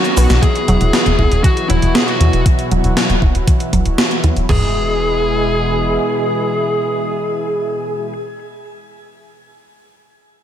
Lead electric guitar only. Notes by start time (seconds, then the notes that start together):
Already playing: C#4 F#4
0.42 G#4
1.43 F#4
1.69 E4
1.95 G#4
2.07 F#4
4.50 G#4